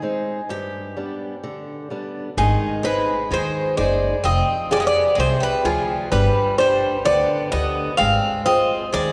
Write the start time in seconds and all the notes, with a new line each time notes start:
Already playing: G#4
0.02 G#3 C4 D#4
0.49 G2 G4
0.97 G3 B3 D4
1.44 D3
1.90 G3 B3 D4
2.37 G#1 D#3 G#3 G#4
2.83 G#3 C4 D#4 G#4 B4
3.31 D#2 D#3 G#3 C5
3.77 F#1 G#3 D#4 G#4 C5 D5
4.24 F1 F3 C4 D#5
4.71 G#3 F4 G4 G#4 D5
4.77 C4 D#5
4.82 B3
4.87 D5
5.15 C2 C3 G#3
5.20 C5
5.40 G3 B4
5.64 D2 F3 F4 G#4 G5
6.12 G1 G3 B4
6.58 G3 D4 G4 C5 D5
7.05 D2 D3 B3 D5
7.52 D2 D3 B3 G4 B4 D#5
7.97 G#1 G#3 C4 F5
8.46 C4 F4 G#4 C5 D#5
8.93 D#2 D#3 G#3 D5